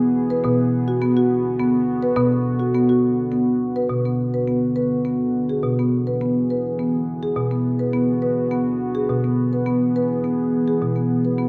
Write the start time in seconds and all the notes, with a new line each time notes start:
Already playing: E3 B3 G#4
0.30 B4
0.44 B2 D3 B3 F#4
0.88 F#4
1.02 B3
1.17 F#4
1.59 B3
2.03 B4
2.16 B2 B3
2.60 F#4
2.74 B3
2.89 F#4
3.32 B3
3.76 B4
3.88 B2 D3 B3 F#4
4.05 B3
4.34 B4
4.47 B3
4.76 B4
5.05 B3
5.49 G#4
5.63 B2 E3 B3 G#4
5.79 B3
6.07 B4
6.21 B3
6.50 B4
6.79 B3
7.23 G#4
7.36 B2 D3 F#4
7.51 B3
7.79 B4
7.93 B3
8.22 B4
8.51 B3
8.95 G#4
9.09 B2 E3 G#4
9.24 B3
9.53 B4
9.66 B3
9.96 B4
10.24 B3
10.68 G#4
10.82 B2 D3 F#4
10.96 B3
11.25 B4
11.38 B3